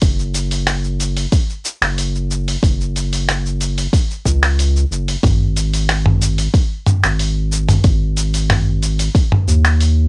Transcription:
0.02 1.26 F#1 loud
0.02 kick loud
0.02 open hi-hat medium
0.02 shaker soft
0.19 shaker soft
0.34 open hi-hat soft
0.34 shaker medium
0.51 open hi-hat soft
0.51 shaker soft
0.67 finger snap medium
0.67 open hi-hat medium
0.67 shaker soft
0.84 shaker soft
1.00 open hi-hat soft
1.00 shaker medium
1.17 open hi-hat soft
1.17 shaker soft
1.32 kick loud
1.32 open hi-hat medium
1.32 shaker soft
1.50 shaker soft
1.65 shaker medium
1.82 2.56 F#1 loud
1.82 finger snap medium
1.82 open hi-hat soft
1.82 shaker soft
1.98 open hi-hat medium
1.98 shaker soft
2.15 shaker soft
2.31 shaker medium
2.48 open hi-hat soft
2.48 shaker soft
2.63 3.87 F#1 loud
2.63 kick loud
2.63 open hi-hat medium
2.63 shaker soft
2.81 shaker soft
2.96 open hi-hat soft
2.96 shaker medium
3.13 open hi-hat soft
3.13 shaker soft
3.29 finger snap medium
3.29 open hi-hat medium
3.29 shaker soft
3.46 shaker soft
3.61 open hi-hat soft
3.61 shaker medium
3.78 open hi-hat soft
3.78 shaker soft
3.93 kick loud
3.93 open hi-hat medium
3.93 shaker soft
4.11 shaker soft
4.25 4.85 C#2 medium
4.25 kick medium
4.25 shaker medium
4.43 finger snap medium
4.43 open hi-hat soft
4.43 shaker soft
4.59 open hi-hat medium
4.59 shaker soft
4.76 shaker soft
4.91 5.16 F#1 medium
4.91 shaker medium
5.08 open hi-hat soft
5.08 shaker soft
5.23 6.48 G#1 loud
5.23 kick loud
5.23 mid tom medium
5.23 open hi-hat medium
5.23 shaker soft
5.57 open hi-hat soft
5.57 shaker medium
5.74 open hi-hat soft
5.74 shaker soft
5.89 finger snap medium
5.89 open hi-hat medium
5.89 shaker soft
6.06 mid tom medium
6.22 open hi-hat soft
6.22 shaker medium
6.38 open hi-hat soft
6.38 shaker soft
6.54 kick loud
6.54 open hi-hat medium
6.54 shaker soft
6.87 mid tom medium
6.87 shaker medium
7.04 7.78 G#1 medium
7.04 finger snap medium
7.04 open hi-hat soft
7.04 shaker soft
7.19 open hi-hat medium
7.19 shaker soft
7.52 shaker medium
7.69 mid tom medium
7.69 open hi-hat soft
7.69 shaker soft
7.84 9.09 G#1 loud
7.84 kick loud
7.84 open hi-hat medium
7.84 shaker soft
8.17 open hi-hat soft
8.17 shaker medium
8.34 open hi-hat soft
8.34 shaker soft
8.50 finger snap medium
8.50 mid tom medium
8.50 open hi-hat medium
8.50 shaker soft
8.83 open hi-hat soft
8.83 shaker medium
8.99 open hi-hat soft
8.99 shaker soft
9.15 kick loud
9.15 open hi-hat medium
9.15 shaker soft
9.32 mid tom medium
9.47 10.07 D#2 medium
9.47 shaker medium
9.65 finger snap medium
9.65 open hi-hat soft
9.65 shaker soft
9.80 open hi-hat medium
9.80 shaker soft

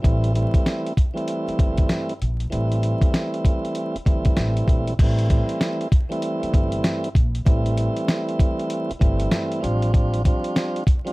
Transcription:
0.02 0.44 A1 loud
0.02 0.32 E3 medium
0.02 0.32 G3 medium
0.02 0.33 A3 medium
0.02 0.33 C4 medium
0.02 0.33 E4 loud
0.02 kick loud
0.02 closed hi-hat medium
0.24 closed hi-hat medium
0.33 0.92 E3 medium
0.33 0.93 G3 medium
0.33 0.93 A3 medium
0.33 0.93 C4 medium
0.33 0.94 E4 loud
0.33 closed hi-hat medium
0.54 kick medium
0.54 closed hi-hat medium
0.66 snare loud
0.66 closed hi-hat medium
0.86 closed hi-hat soft
0.97 kick loud
0.97 closed hi-hat medium
1.14 2.13 E3 loud
1.14 2.13 G3 medium
1.14 2.14 A3 medium
1.14 2.14 C4 medium
1.14 2.14 E4 loud
1.14 closed hi-hat soft
1.28 closed hi-hat medium
1.48 muted upright bass stroke soft
1.48 closed hi-hat soft
1.59 1.83 G1 medium
1.59 kick medium
1.59 closed hi-hat medium
1.78 kick medium
1.78 closed hi-hat medium
1.89 snare loud
1.89 closed hi-hat medium
2.09 closed hi-hat medium
2.22 2.45 A#1 medium
2.22 closed hi-hat medium
2.40 closed hi-hat medium
2.50 2.91 A1 loud
2.50 3.96 E3 medium
2.50 3.96 G3 medium
2.50 3.97 A3 medium
2.50 3.97 C4 medium
2.50 3.97 E4 loud
2.50 closed hi-hat medium
2.72 closed hi-hat medium
2.83 closed hi-hat medium
3.01 kick medium
3.01 closed hi-hat medium
3.14 snare loud
3.14 closed hi-hat loud
3.34 closed hi-hat soft
3.45 kick loud
3.45 closed hi-hat medium
3.65 closed hi-hat soft
3.75 closed hi-hat medium
3.95 muted upright bass stroke soft
3.95 closed hi-hat soft
4.05 4.31 G1 medium
4.05 4.93 E3 medium
4.05 4.93 G3 medium
4.05 4.94 A3 medium
4.05 4.94 C4 medium
4.05 4.94 E4 loud
4.05 kick medium
4.05 closed hi-hat medium
4.25 kick loud
4.25 closed hi-hat medium
4.37 4.62 A1 medium
4.37 snare loud
4.37 closed hi-hat medium
4.57 closed hi-hat medium
4.68 4.92 A#1 medium
4.68 kick medium
4.68 closed hi-hat medium
4.87 closed hi-hat medium
4.99 5.38 A1 loud
4.99 5.27 E3 medium
4.99 5.28 G3 medium
4.99 5.29 A3 medium
4.99 5.29 C4 medium
4.99 kick loud
4.99 closed hi-hat medium
4.99 crash loud
5.04 5.30 E4 loud
5.19 closed hi-hat medium
5.28 5.87 E3 medium
5.28 5.88 G3 medium
5.28 5.88 A3 medium
5.28 5.88 C4 medium
5.28 5.89 E4 loud
5.28 kick medium
5.28 closed hi-hat medium
5.49 closed hi-hat medium
5.61 snare loud
5.61 closed hi-hat medium
5.81 closed hi-hat soft
5.92 kick loud
5.92 closed hi-hat medium
6.09 7.08 E3 medium
6.09 7.08 G3 medium
6.09 7.09 A3 medium
6.09 7.09 C4 medium
6.09 7.09 E4 loud
6.09 closed hi-hat soft
6.22 closed hi-hat medium
6.43 muted upright bass stroke soft
6.43 closed hi-hat medium
6.54 6.78 G1 loud
6.54 kick medium
6.54 closed hi-hat medium
6.72 closed hi-hat medium
6.84 snare loud
6.84 closed hi-hat medium
7.04 closed hi-hat medium
7.15 7.40 A#1 medium
7.15 kick medium
7.15 closed hi-hat medium
7.35 closed hi-hat medium
7.45 7.86 A1 loud
7.45 8.91 E3 medium
7.45 8.91 G3 medium
7.45 8.92 A3 medium
7.45 8.92 C4 medium
7.45 8.92 E4 loud
7.45 kick loud
7.45 closed hi-hat medium
7.66 closed hi-hat medium
7.77 closed hi-hat medium
7.97 closed hi-hat medium
8.08 snare loud
8.08 closed hi-hat loud
8.29 closed hi-hat soft
8.39 kick loud
8.39 closed hi-hat medium
8.59 closed hi-hat soft
8.70 closed hi-hat medium
8.90 muted upright bass stroke soft
8.90 closed hi-hat medium
8.99 9.26 G1 medium
8.99 9.62 E3 medium
8.99 9.60 G3 medium
8.99 9.63 A3 medium
8.99 9.61 C4 medium
8.99 9.64 E4 loud
8.99 kick medium
8.99 closed hi-hat medium
9.20 closed hi-hat medium
9.31 snare loud
9.31 closed hi-hat medium
9.52 closed hi-hat medium
9.61 10.27 A1 loud
9.61 9.90 F3 loud
9.61 9.91 G3 medium
9.61 9.92 C4 medium
9.61 9.92 D4 medium
9.61 9.92 F4 loud
9.61 closed hi-hat medium
9.82 closed hi-hat medium
9.91 10.22 F3 medium
9.91 10.22 G3 medium
9.91 10.22 C4 medium
9.91 10.23 D4 medium
9.91 10.23 F4 loud
9.91 kick loud
9.91 closed hi-hat medium
10.14 closed hi-hat medium
10.24 10.83 F3 loud
10.24 10.83 G3 medium
10.24 10.83 C4 medium
10.24 10.84 D4 medium
10.24 10.84 F4 loud
10.24 kick medium
10.24 closed hi-hat medium
10.44 closed hi-hat medium
10.56 snare loud
10.56 closed hi-hat medium
10.76 closed hi-hat soft
10.87 kick loud
10.87 closed hi-hat medium
11.05 11.13 F3 medium
11.05 11.13 G3 medium
11.05 11.13 C4 medium
11.05 11.13 D4 medium
11.05 11.13 F4 loud
11.05 closed hi-hat soft

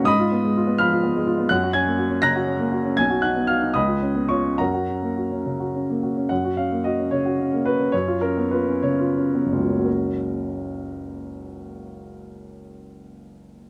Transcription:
0.03 1.44 G#2 medium
0.03 0.75 D#5 medium
0.03 0.75 B5 medium
0.03 0.78 D#6 loud
0.19 0.38 F4 medium
0.32 0.50 B3 soft
0.44 0.62 G#3 soft
0.57 0.75 F4 soft
0.67 0.86 B3 soft
0.78 0.98 F3 soft
0.78 1.46 F5 medium
0.78 1.46 B5 medium
0.78 1.50 F6 medium
0.92 1.10 F4 soft
1.03 1.21 B3 soft
1.16 1.34 G#3 soft
1.27 1.45 F4 medium
1.38 1.50 B3 soft
1.49 2.94 F#2 medium
1.49 1.73 F#5 medium
1.49 1.73 F#6 medium
1.63 1.82 F#4 medium
1.73 1.93 C#4 soft
1.73 2.19 G#5 medium
1.73 2.22 G#6 medium
1.87 2.05 A#3 soft
1.98 2.17 F#4 soft
2.10 2.30 C#4 medium
2.22 2.42 C#3 soft
2.22 2.94 A#5 medium
2.22 2.93 F#6 medium
2.22 2.97 A#6 medium
2.36 2.55 F#4 soft
2.47 2.67 C#4 soft
2.59 2.79 A#3 soft
2.72 2.92 F#4 soft
2.85 2.97 C#4 soft
2.97 3.74 B1 medium
2.97 3.22 G#5 medium
2.97 3.23 G#6 medium
3.10 3.31 F#4 soft
3.22 3.44 D#4 soft
3.22 3.47 F#5 soft
3.22 3.49 F#6 medium
3.36 3.57 B3 soft
3.47 3.70 F#4 soft
3.47 3.73 F5 medium
3.47 3.75 F6 medium
3.62 3.75 D#4 soft
3.74 4.56 C#2 medium
3.74 4.26 D#5 medium
3.74 4.26 B5 medium
3.74 4.29 D#6 medium
3.88 4.10 F4 soft
4.02 4.24 C#4 soft
4.15 4.38 B3 soft
4.29 4.53 F4 soft
4.29 4.56 C#5 medium
4.29 4.58 C#6 medium
4.44 4.59 C#4 soft
4.58 6.27 F#2 soft
4.58 5.99 A#4 soft
4.58 5.99 F#5 soft
4.58 6.02 A#5 medium
4.74 4.97 F#4 soft
4.88 5.11 C#4 soft
5.02 5.25 A#3 soft
5.17 5.40 F#4 soft
5.31 5.54 C#4 soft
5.46 5.68 C#3 soft
5.60 5.83 F#4 soft
5.75 5.97 C#4 soft
5.90 6.12 A#3 soft
6.03 6.25 F#4 soft
6.17 6.30 C#4 soft
6.29 7.89 F#2 soft
6.29 6.56 F#5 medium
6.44 6.65 F#4 soft
6.57 6.79 C#4 soft
6.57 6.84 F5 medium
6.72 6.92 A#3 soft
6.84 7.06 F#4 soft
6.84 7.11 D#5 medium
6.99 7.20 C#4 soft
7.11 7.33 C#3 soft
7.11 7.65 C#5 medium
7.26 7.46 F#4 soft
7.39 7.60 C#4 soft
7.53 7.74 A#3 soft
7.65 7.88 F#4 soft
7.65 7.93 B4 medium
7.80 7.93 C#4 soft
7.92 9.83 F#2 medium
7.92 8.20 C#5 medium
8.08 8.30 F4 soft
8.21 8.45 C#4 soft
8.21 8.50 A#4 medium
8.37 8.60 B3 soft
8.51 8.76 F4 soft
8.51 8.82 B4 medium
8.67 8.92 C#4 soft
8.82 9.09 C#3 soft
8.82 9.87 C#5 medium
8.99 9.26 F4 soft
9.17 9.45 C#4 soft
9.35 9.63 B3 soft
9.46 13.37 F#1 soft
9.53 13.44 C#2 soft
9.53 9.81 F4 soft
9.59 13.51 F#3 soft
9.66 13.57 A#3 soft
9.70 9.72 C#4 soft
9.70 13.64 C#4 soft
9.79 13.70 F#4 soft
9.85 13.70 A#4 soft

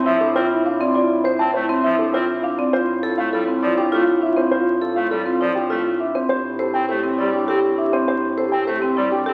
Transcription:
0.00 2.57 A2 medium
0.00 0.10 C4 medium
0.06 0.17 F3 medium
0.06 0.25 E4 medium
0.06 0.25 E5 medium
0.10 0.32 E4 medium
0.21 0.40 D4 medium
0.21 0.40 A4 medium
0.35 0.47 C4 medium
0.35 0.55 F4 medium
0.35 0.55 C5 medium
0.41 0.63 E4 medium
0.66 0.85 D4 medium
0.66 0.85 F5 medium
0.72 0.94 E4 medium
0.80 1.00 C4 medium
0.80 0.93 D5 medium
0.94 1.14 F4 medium
0.94 1.14 D5 medium
1.03 1.24 E4 medium
1.24 1.44 C5 medium
1.34 1.56 E4 medium
1.39 1.51 C4 medium
1.39 1.59 A5 medium
1.54 1.66 A3 medium
1.54 1.73 C5 medium
1.65 1.87 E4 medium
1.69 1.89 C4 medium
1.84 1.95 F3 medium
1.84 2.03 E4 medium
1.84 2.03 E5 medium
1.96 2.18 D4 medium
1.96 2.18 E4 soft
1.96 2.18 A4 medium
2.14 2.25 C4 medium
2.14 2.33 F4 medium
2.14 2.33 C5 medium
2.27 2.49 E4 soft
2.43 2.63 D4 medium
2.43 2.63 F5 medium
2.58 2.78 C4 medium
2.58 2.78 D5 medium
2.73 6.14 A2 medium
2.73 2.95 F4 soft
2.73 2.93 F4 medium
2.73 2.92 C5 medium
3.03 3.26 F4 medium
3.03 3.22 A4 medium
3.18 3.29 A3 medium
3.18 3.37 F5 medium
3.33 3.44 G3 medium
3.33 3.57 F4 medium
3.33 3.52 A4 medium
3.48 3.67 C4 medium
3.62 3.73 F3 medium
3.62 3.82 E4 medium
3.62 3.82 D5 medium
3.67 3.88 F4 medium
3.78 3.97 D4 medium
3.78 3.97 G4 medium
3.92 4.03 A3 medium
3.92 4.11 F4 medium
3.92 4.12 A4 medium
3.97 4.19 F4 medium
4.22 4.41 D4 medium
4.22 4.41 E5 medium
4.29 4.50 F4 medium
4.36 4.56 C4 medium
4.36 4.50 C5 medium
4.51 4.71 F4 medium
4.51 4.71 C5 medium
4.60 4.81 F4 medium
4.82 5.01 A4 medium
4.91 5.13 F4 medium
4.96 5.07 A3 medium
4.96 5.15 F5 medium
5.11 5.22 G3 medium
5.11 5.30 A4 medium
5.22 5.45 C4 medium
5.22 5.44 F4 medium
5.41 5.52 F3 medium
5.41 5.60 E4 medium
5.41 5.60 D5 medium
5.53 5.75 D4 medium
5.53 5.75 F4 soft
5.53 5.75 G4 medium
5.70 5.81 A3 medium
5.70 5.89 F4 medium
5.70 5.89 A4 medium
5.84 6.06 F4 soft
6.00 6.19 D4 medium
6.00 6.19 E5 medium
6.15 6.34 C4 medium
6.15 6.28 C5 medium
6.29 9.33 A2 medium
6.29 6.51 G4 soft
6.29 6.49 G4 medium
6.29 6.49 C5 medium
6.59 6.82 G4 soft
6.59 6.79 A4 medium
6.59 6.79 C5 medium
6.74 6.85 C4 medium
6.74 6.93 G5 medium
6.89 7.00 A3 medium
6.89 7.14 G4 medium
6.89 7.08 A4 medium
6.89 7.08 C5 medium
7.03 7.23 C4 medium
7.18 7.30 G3 medium
7.18 7.38 E4 medium
7.18 7.38 D5 medium
7.23 7.45 G4 medium
7.33 7.53 D4 medium
7.33 7.53 G4 medium
7.48 7.59 C4 medium
7.48 7.68 G4 medium
7.48 7.68 A4 medium
7.54 7.75 G4 medium
7.78 7.97 D4 medium
7.78 7.97 E5 medium
7.85 8.06 G4 medium
7.93 8.12 C4 medium
7.93 8.06 C5 medium
8.08 8.27 G4 medium
8.08 8.27 C5 medium
8.15 8.37 G4 medium
8.37 8.57 A4 medium
8.37 8.57 C5 medium
8.47 8.68 G4 medium
8.52 8.63 C4 medium
8.52 8.71 G5 medium
8.66 8.78 A3 medium
8.66 8.86 A4 medium
8.66 8.87 C5 medium
8.78 9.01 C4 medium
8.78 9.00 G4 medium
8.97 9.08 G3 medium
8.97 9.16 E4 medium
8.97 9.16 D5 medium
9.09 9.31 D4 medium
9.09 9.31 G4 soft
9.09 9.31 G4 medium
9.26 9.33 C4 medium
9.26 9.33 G4 medium
9.26 9.33 A4 medium

